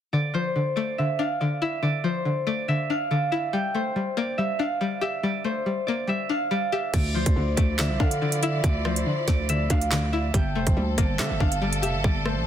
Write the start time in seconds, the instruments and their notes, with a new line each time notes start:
0.13 synth pluck D3, harp D5
0.34 synth pluck F3, harp C5
0.56 synth pluck D3
0.76 synth pluck A3, harp D5
0.98 synth pluck D3, harp E5
1.19 synth pluck D4, harp F5
1.40 synth pluck D3, harp D5
1.62 synth pluck E4, harp E5
1.83 synth pluck D3, harp D5
2.04 synth pluck F3, harp C5
2.25 synth pluck D3
2.47 synth pluck A3, harp D5
2.68 synth pluck D3, harp E5
2.90 synth pluck D4, harp F5
3.11 synth pluck D3, harp D5
3.32 synth pluck E4, harp E5
3.53 synth pluck G3, harp G5
3.74 synth pluck A3, harp C5
3.96 synth pluck G3
4.17 synth pluck A#3, harp D5
4.38 synth pluck G3, harp E5
4.59 synth pluck D4, harp F5
4.81 synth pluck G3, harp D5
5.01 synth pluck G4, harp E5
5.23 synth pluck G3, harp D5
5.44 synth pluck A3, harp C5
5.66 synth pluck G3
5.87 synth pluck A#3, harp D5
6.07 synth pluck G3, harp E5
6.29 synth pluck D4, harp F5
6.51 synth pluck G3, harp D5
6.72 synth pluck G4, harp E5
6.94 808-style bass D2, synth pluck D3, string section F3 E4 D5, harp D5, kick, closed hi-hat, crash
7.15 synth pluck F3, harp C5
7.26 808-style bass D2, kick, closed hi-hat
7.36 808-style bass D2, synth pluck D3
7.57 808-style bass D2, synth pluck A3, harp D5, kick, closed hi-hat
7.79 synth pluck D3, harp E5, snare, clap, closed hi-hat
7.90 808-style bass C2
8.00 808-style bass D3, synth pluck D4, harp F5, kick
8.11 closed hi-hat
8.21 synth pluck D3, harp D5
8.32 closed hi-hat
8.43 synth pluck E4, harp E5, closed hi-hat
8.63 808-style bass D2, synth pluck D3, harp D5, kick, closed hi-hat
8.85 synth pluck F3, harp C5, cross-stick
8.96 closed hi-hat
9.06 synth pluck D3
9.28 808-style bass D2, synth pluck A3, harp D5, kick, snare, closed hi-hat
9.49 synth pluck D3, harp E5, closed hi-hat
9.70 808-style bass D2, synth pluck D4, harp F5, kick, closed hi-hat
9.81 closed hi-hat
9.91 synth pluck D3, harp D5, snare, clap
10.12 synth pluck E4, harp E5
10.34 808-style bass G1, string section A#2 G3 A4, synth pluck G3, harp G5, kick, closed hi-hat
10.55 808-style bass F1, synth pluck A3, harp C5
10.67 808-style bass G1, kick, closed hi-hat
10.77 808-style bass D2, synth pluck G3
10.98 808-style bass G1, synth pluck A#3, harp D5, kick, closed hi-hat
11.19 808-style bass D3, synth pluck G3, harp E5, snare, clap, closed hi-hat
11.30 808-style bass G1
11.40 808-style bass G1, synth pluck D4, harp F5, kick
11.52 closed hi-hat
11.62 synth pluck G3, harp D5
11.73 closed hi-hat
11.82 808-style bass F1, synth pluck G4, harp E5, closed hi-hat
11.94 808-style bass G1
12.04 808-style bass G1, synth pluck G3, harp D5, kick
12.25 synth pluck A3, harp C5, cross-stick
12.37 808-style bass A1